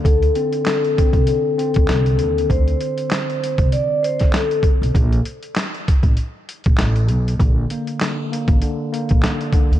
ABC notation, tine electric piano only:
X:1
M:4/4
L:1/8
Q:"Swing 16ths" 1/4=98
K:Bblyd
V:1 name="Tine electric piano" clef=bass
D, C D, C D, C D, D, | z8 | z8 | D, B, D, B, D, B, D, D, |]